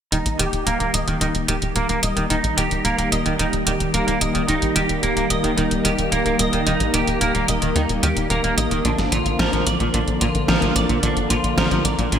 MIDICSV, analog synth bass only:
0, 0, Header, 1, 2, 480
1, 0, Start_track
1, 0, Key_signature, -3, "major"
1, 0, Tempo, 545455
1, 107, Time_signature, 4, 2, 24, 8
1, 10728, End_track
2, 0, Start_track
2, 0, Title_t, "Analog synth bass"
2, 0, Program_c, 0, 38
2, 107, Note_on_c, 0, 27, 95
2, 204, Note_off_c, 0, 27, 0
2, 227, Note_on_c, 0, 34, 75
2, 324, Note_off_c, 0, 34, 0
2, 347, Note_on_c, 0, 27, 87
2, 444, Note_off_c, 0, 27, 0
2, 466, Note_on_c, 0, 27, 69
2, 564, Note_off_c, 0, 27, 0
2, 586, Note_on_c, 0, 27, 92
2, 684, Note_off_c, 0, 27, 0
2, 707, Note_on_c, 0, 27, 71
2, 804, Note_off_c, 0, 27, 0
2, 826, Note_on_c, 0, 27, 87
2, 924, Note_off_c, 0, 27, 0
2, 946, Note_on_c, 0, 27, 80
2, 1044, Note_off_c, 0, 27, 0
2, 1066, Note_on_c, 0, 27, 93
2, 1164, Note_off_c, 0, 27, 0
2, 1186, Note_on_c, 0, 27, 72
2, 1284, Note_off_c, 0, 27, 0
2, 1306, Note_on_c, 0, 27, 89
2, 1404, Note_off_c, 0, 27, 0
2, 1428, Note_on_c, 0, 27, 78
2, 1525, Note_off_c, 0, 27, 0
2, 1547, Note_on_c, 0, 27, 102
2, 1644, Note_off_c, 0, 27, 0
2, 1667, Note_on_c, 0, 27, 70
2, 1764, Note_off_c, 0, 27, 0
2, 1787, Note_on_c, 0, 27, 94
2, 1884, Note_off_c, 0, 27, 0
2, 1906, Note_on_c, 0, 27, 77
2, 2004, Note_off_c, 0, 27, 0
2, 2027, Note_on_c, 0, 27, 89
2, 2124, Note_off_c, 0, 27, 0
2, 2147, Note_on_c, 0, 34, 74
2, 2244, Note_off_c, 0, 34, 0
2, 2266, Note_on_c, 0, 27, 88
2, 2364, Note_off_c, 0, 27, 0
2, 2387, Note_on_c, 0, 27, 73
2, 2484, Note_off_c, 0, 27, 0
2, 2507, Note_on_c, 0, 27, 94
2, 2604, Note_off_c, 0, 27, 0
2, 2627, Note_on_c, 0, 27, 73
2, 2724, Note_off_c, 0, 27, 0
2, 2747, Note_on_c, 0, 27, 90
2, 2844, Note_off_c, 0, 27, 0
2, 2868, Note_on_c, 0, 27, 77
2, 2965, Note_off_c, 0, 27, 0
2, 2987, Note_on_c, 0, 27, 94
2, 3084, Note_off_c, 0, 27, 0
2, 3107, Note_on_c, 0, 27, 71
2, 3204, Note_off_c, 0, 27, 0
2, 3227, Note_on_c, 0, 27, 89
2, 3324, Note_off_c, 0, 27, 0
2, 3347, Note_on_c, 0, 27, 78
2, 3444, Note_off_c, 0, 27, 0
2, 3466, Note_on_c, 0, 27, 100
2, 3564, Note_off_c, 0, 27, 0
2, 3588, Note_on_c, 0, 27, 72
2, 3685, Note_off_c, 0, 27, 0
2, 3709, Note_on_c, 0, 27, 91
2, 3805, Note_off_c, 0, 27, 0
2, 3827, Note_on_c, 0, 27, 77
2, 3924, Note_off_c, 0, 27, 0
2, 3947, Note_on_c, 0, 27, 90
2, 4044, Note_off_c, 0, 27, 0
2, 4068, Note_on_c, 0, 34, 80
2, 4165, Note_off_c, 0, 34, 0
2, 4188, Note_on_c, 0, 27, 91
2, 4285, Note_off_c, 0, 27, 0
2, 4308, Note_on_c, 0, 27, 71
2, 4405, Note_off_c, 0, 27, 0
2, 4428, Note_on_c, 0, 27, 93
2, 4525, Note_off_c, 0, 27, 0
2, 4546, Note_on_c, 0, 27, 72
2, 4644, Note_off_c, 0, 27, 0
2, 4667, Note_on_c, 0, 27, 88
2, 4764, Note_off_c, 0, 27, 0
2, 4786, Note_on_c, 0, 27, 77
2, 4884, Note_off_c, 0, 27, 0
2, 4906, Note_on_c, 0, 27, 98
2, 5004, Note_off_c, 0, 27, 0
2, 5026, Note_on_c, 0, 27, 71
2, 5124, Note_off_c, 0, 27, 0
2, 5146, Note_on_c, 0, 27, 90
2, 5244, Note_off_c, 0, 27, 0
2, 5266, Note_on_c, 0, 27, 75
2, 5364, Note_off_c, 0, 27, 0
2, 5386, Note_on_c, 0, 27, 96
2, 5484, Note_off_c, 0, 27, 0
2, 5506, Note_on_c, 0, 27, 72
2, 5604, Note_off_c, 0, 27, 0
2, 5627, Note_on_c, 0, 27, 93
2, 5724, Note_off_c, 0, 27, 0
2, 5747, Note_on_c, 0, 27, 72
2, 5844, Note_off_c, 0, 27, 0
2, 5867, Note_on_c, 0, 27, 88
2, 5964, Note_off_c, 0, 27, 0
2, 5987, Note_on_c, 0, 34, 77
2, 6084, Note_off_c, 0, 34, 0
2, 6106, Note_on_c, 0, 27, 91
2, 6204, Note_off_c, 0, 27, 0
2, 6227, Note_on_c, 0, 27, 74
2, 6324, Note_off_c, 0, 27, 0
2, 6346, Note_on_c, 0, 27, 92
2, 6444, Note_off_c, 0, 27, 0
2, 6467, Note_on_c, 0, 27, 77
2, 6565, Note_off_c, 0, 27, 0
2, 6587, Note_on_c, 0, 27, 91
2, 6684, Note_off_c, 0, 27, 0
2, 6708, Note_on_c, 0, 27, 79
2, 6805, Note_off_c, 0, 27, 0
2, 6826, Note_on_c, 0, 39, 94
2, 6924, Note_off_c, 0, 39, 0
2, 6946, Note_on_c, 0, 27, 72
2, 7044, Note_off_c, 0, 27, 0
2, 7066, Note_on_c, 0, 39, 88
2, 7164, Note_off_c, 0, 39, 0
2, 7185, Note_on_c, 0, 27, 74
2, 7283, Note_off_c, 0, 27, 0
2, 7306, Note_on_c, 0, 27, 101
2, 7404, Note_off_c, 0, 27, 0
2, 7426, Note_on_c, 0, 27, 71
2, 7524, Note_off_c, 0, 27, 0
2, 7546, Note_on_c, 0, 34, 91
2, 7644, Note_off_c, 0, 34, 0
2, 7665, Note_on_c, 0, 27, 72
2, 7763, Note_off_c, 0, 27, 0
2, 7786, Note_on_c, 0, 34, 96
2, 7884, Note_off_c, 0, 34, 0
2, 7906, Note_on_c, 0, 32, 77
2, 8004, Note_off_c, 0, 32, 0
2, 8026, Note_on_c, 0, 34, 92
2, 8124, Note_off_c, 0, 34, 0
2, 8145, Note_on_c, 0, 34, 73
2, 8243, Note_off_c, 0, 34, 0
2, 8265, Note_on_c, 0, 34, 96
2, 8363, Note_off_c, 0, 34, 0
2, 8386, Note_on_c, 0, 34, 70
2, 8484, Note_off_c, 0, 34, 0
2, 8506, Note_on_c, 0, 34, 85
2, 8604, Note_off_c, 0, 34, 0
2, 8626, Note_on_c, 0, 34, 82
2, 8724, Note_off_c, 0, 34, 0
2, 8746, Note_on_c, 0, 34, 94
2, 8844, Note_off_c, 0, 34, 0
2, 8866, Note_on_c, 0, 34, 73
2, 8964, Note_off_c, 0, 34, 0
2, 8987, Note_on_c, 0, 34, 92
2, 9084, Note_off_c, 0, 34, 0
2, 9106, Note_on_c, 0, 34, 77
2, 9204, Note_off_c, 0, 34, 0
2, 9227, Note_on_c, 0, 34, 98
2, 9324, Note_off_c, 0, 34, 0
2, 9345, Note_on_c, 0, 34, 69
2, 9443, Note_off_c, 0, 34, 0
2, 9466, Note_on_c, 0, 34, 93
2, 9564, Note_off_c, 0, 34, 0
2, 9586, Note_on_c, 0, 34, 79
2, 9684, Note_off_c, 0, 34, 0
2, 9706, Note_on_c, 0, 34, 93
2, 9804, Note_off_c, 0, 34, 0
2, 9826, Note_on_c, 0, 32, 76
2, 9924, Note_off_c, 0, 32, 0
2, 9946, Note_on_c, 0, 34, 89
2, 10044, Note_off_c, 0, 34, 0
2, 10066, Note_on_c, 0, 34, 72
2, 10164, Note_off_c, 0, 34, 0
2, 10185, Note_on_c, 0, 34, 95
2, 10283, Note_off_c, 0, 34, 0
2, 10306, Note_on_c, 0, 34, 73
2, 10404, Note_off_c, 0, 34, 0
2, 10426, Note_on_c, 0, 34, 87
2, 10524, Note_off_c, 0, 34, 0
2, 10547, Note_on_c, 0, 34, 82
2, 10644, Note_off_c, 0, 34, 0
2, 10668, Note_on_c, 0, 34, 97
2, 10728, Note_off_c, 0, 34, 0
2, 10728, End_track
0, 0, End_of_file